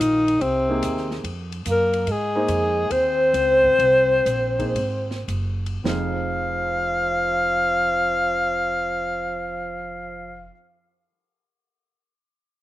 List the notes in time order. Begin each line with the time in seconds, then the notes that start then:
0.00 A#1 D#3 D#4, hi-hat pedal, ride
0.28 ride
0.40 C2 C3 C4, ride
0.69 A#3 D#4 G#4 C5
0.83 D#2, hi-hat pedal, ride
0.97 snare
1.11 snare
1.24 F2, ride
1.52 ride
1.66 F#2 A#3, hi-hat pedal, ride
1.71 A#4
1.93 ride
2.07 G#2 G#3, ride
2.11 G#4
2.35 A#3 D#4 G#4 C5
2.48 F2, hi-hat pedal, ride
2.90 D#2 C4 C5, ride
3.34 C#2, hi-hat pedal, ride
3.64 kick
3.79 C2, ride
4.26 A#1, hi-hat pedal, ride
4.59 A#3 D#4 G#4 C5, kick, ride
4.75 G#1, ride
5.11 snare
5.28 F#1, hi-hat pedal, ride
5.66 ride
5.84 F1 F2 F3 D#4 G#4 C5, snare
5.88 F5